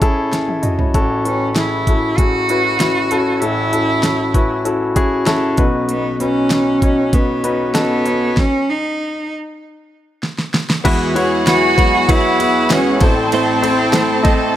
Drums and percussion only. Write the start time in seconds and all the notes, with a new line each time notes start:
0.02 kick, closed hi-hat
0.33 snare, closed hi-hat
0.48 high tom
0.63 closed hi-hat, mid tom
0.79 floor tom
0.94 kick, closed hi-hat
1.25 closed hi-hat
1.56 snare, closed hi-hat
1.87 kick, closed hi-hat
2.18 kick, closed hi-hat
2.49 closed hi-hat
2.80 snare, closed hi-hat
3.11 closed hi-hat
3.42 closed hi-hat
3.73 closed hi-hat
4.03 snare, closed hi-hat
4.34 kick, closed hi-hat
4.65 closed hi-hat
4.96 kick, closed hi-hat
5.27 snare, closed hi-hat
5.57 kick, closed hi-hat
5.89 closed hi-hat
6.20 closed hi-hat
6.50 snare, closed hi-hat
6.82 kick, closed hi-hat
7.13 kick, closed hi-hat
7.44 closed hi-hat
7.75 snare, closed hi-hat
8.06 closed hi-hat
8.37 kick, snare
10.23 snare
10.39 snare
10.54 snare
10.70 snare
10.85 kick, crash, ride
11.16 ride
11.47 snare, ride
11.78 kick, ride
12.09 kick, ride
12.40 ride
12.70 snare, ride
13.01 kick, snare, ride
13.32 ride
13.64 ride
13.93 snare, ride
14.25 kick, ride